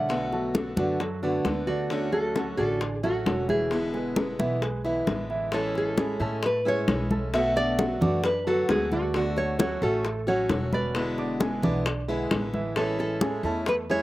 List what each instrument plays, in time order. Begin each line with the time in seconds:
Already playing: upright bass B1, grand piano D3 D5, nylon-string guitar F#5
0.09 steel-string acoustic guitar B2 D3 A3 B3 F#4, high bongo, high conga
0.32 grand piano F#3 F#4 A4, high bongo, high conga
0.54 steel-string acoustic guitar D3 A3 B3 F#4, high bongo, high conga
0.76 upright bass F#2, grand piano D3 D4 D5, steel-string acoustic guitar D3 A3 B3 F#4, high bongo, high conga
1.00 grand piano F#3 F#4 A4, muted steel-string acoustic guitar stroke, high bongo, high conga
1.23 grand piano D3 D4 D5, steel-string acoustic guitar D3 A3 B3 F#4, high bongo, high conga
1.45 upright bass D2, steel-string acoustic guitar D3 A3 B3 F#4, high bongo, low bongo, high conga
1.67 grand piano D3 D4 D5, nylon-string guitar F#4, high conga
1.90 grand piano D3 D4 D5, steel-string acoustic guitar D3 A3 C#4 F#4, high bongo, high conga
2.12 grand piano F#3 F#4 A4, nylon-string guitar A4, high conga
2.35 steel-string acoustic guitar D3 A3 C#4 F#4, grand piano F#3 F#4 A4, high bongo, high conga
2.57 upright bass A1, grand piano D3 D4 D5, steel-string acoustic guitar A3 C#4 F#4, nylon-string guitar A4
2.81 muted steel-string acoustic guitar stroke, high bongo, high conga
3.03 grand piano F#3 F#4 A4, steel-string acoustic guitar A3 C#4 F#4, nylon-string guitar F#4, high conga
3.26 upright bass E1, steel-string acoustic guitar D3 A3 C#4 F#4, grand piano F#3 F#4 A4, high bongo, low bongo, high conga
3.48 grand piano E3 E4 E5, nylon-string guitar G#4, high conga
3.71 steel-string acoustic guitar B2 D3 G#3 B3 E4, high bongo, high conga
3.94 grand piano G#3 G#4 B4, high bongo, high conga
4.16 steel-string acoustic guitar D3 G#3 B3 E4, high bongo, high conga
4.39 upright bass B1, steel-string acoustic guitar D3 G#3 B3 E4, grand piano E3 E4 E5, high bongo, high conga
4.62 grand piano G#3 G#4 B4, muted steel-string acoustic guitar stroke, high bongo, high conga
4.85 steel-string acoustic guitar D3 G#3 B3 E4, grand piano E3 E4 E5, high bongo, high conga
5.07 upright bass A1, steel-string acoustic guitar D3 G#3 B3 E4, high bongo, low bongo, high conga
5.30 grand piano E3 E4 E5, high conga
5.52 steel-string acoustic guitar E3 G#3 C#4 E4, grand piano E3 E4 E5, nylon-string guitar A4, high bongo, high conga
5.75 nylon-string guitar A4, high bongo, high conga
5.97 steel-string acoustic guitar E3 G#3 C#4 E4, grand piano G#3 G#4 G#5, high bongo, high conga
6.20 upright bass A2, steel-string acoustic guitar G#3 C#4 E4, grand piano A3 A4 A5, high bongo, high conga
6.43 nylon-string guitar B4, muted steel-string acoustic guitar stroke, high bongo, high conga
6.65 grand piano G#3 G#4 G#5, steel-string acoustic guitar G#3 C#4 E4, nylon-string guitar C#5, high conga
6.88 upright bass B1, steel-string acoustic guitar E3 G#3 C#4 E4, high bongo, low bongo, high conga
7.11 grand piano A4 A5, high bongo, high conga
7.33 steel-string acoustic guitar B2 D3 A3 B3 F#4, nylon-string guitar E5, high bongo, high conga
7.56 grand piano D4 D5 D6, nylon-string guitar D5, high bongo, high conga
7.79 steel-string acoustic guitar D3 A3 B3 F#4, grand piano F#3 F#4 F#5, high bongo, high conga
8.01 upright bass F#2, steel-string acoustic guitar D3 A3 B3 F#4, grand piano D4 D5 D6, high bongo, high conga, low conga
8.24 nylon-string guitar B4, muted steel-string acoustic guitar stroke, high bongo, high conga
8.47 steel-string acoustic guitar D3 A3 B3 F#4, grand piano F#3 F#4 F#5, nylon-string guitar A4, high conga
8.69 upright bass D2, steel-string acoustic guitar D3 A3 B3 F#4, nylon-string guitar G#4, high bongo, low bongo, high conga
8.91 grand piano D3 D4 D5, nylon-string guitar F#4, high bongo, high conga
9.14 steel-string acoustic guitar D3 A3 F#4, grand piano D3 D5, high bongo, high conga
9.37 nylon-string guitar C#5, high bongo, high conga
9.59 steel-string acoustic guitar D3 A3 C#4 F#4, grand piano F#3 F#4 F#5, nylon-string guitar C#5, high bongo, high conga
9.82 upright bass A1, grand piano A3 A4 A5, steel-string acoustic guitar A3 C#4 F#4, nylon-string guitar A4, high bongo, high conga
10.04 muted steel-string acoustic guitar stroke, high bongo, high conga
10.27 grand piano F#3 F#4 F#5, steel-string acoustic guitar A3 C#4 F#4, nylon-string guitar C#5, high conga
10.49 upright bass E1, steel-string acoustic guitar D3 A3 C#4 F#4, high bongo, low bongo, high conga
10.72 grand piano B3 B4 B5, nylon-string guitar D5, high bongo, high conga
10.95 steel-string acoustic guitar B2 D3 G#3 B3 E4, high bongo, high conga
11.18 grand piano D4 D5 D6, high bongo, high conga
11.40 steel-string acoustic guitar D3 G#3 B3 E4, grand piano G#3 G#4 G#5, high bongo, high conga
11.62 upright bass B1, steel-string acoustic guitar D3 G#3 B3 E4, grand piano D4 D5 D6, high bongo, high conga, low conga
11.86 muted steel-string acoustic guitar stroke, high bongo, high conga
12.08 steel-string acoustic guitar D3 G#3 B3 E4, grand piano G#3 G#4 G#5, high conga
12.31 upright bass A1, steel-string acoustic guitar D3 G#3 B3 E4, high bongo, low bongo, high conga
12.54 grand piano E3 E4 E5, high bongo, high conga
12.76 steel-string acoustic guitar E3 G#3 C#4 E4, grand piano E3 E4 E5, nylon-string guitar A4, high bongo, high conga
12.99 nylon-string guitar A4, high bongo, high conga
13.21 steel-string acoustic guitar E3 G#3 C#4 E4, grand piano G#3 G#4 G#5, high bongo, high conga
13.43 upright bass E2, steel-string acoustic guitar G#3 C#4 E4, grand piano A3 A4 A5, high bongo, high conga
13.66 nylon-string guitar B4, muted steel-string acoustic guitar stroke, high bongo, high conga
13.90 grand piano G#3 G#4 G#5, steel-string acoustic guitar G#3 C#4 E4, nylon-string guitar C#5, high conga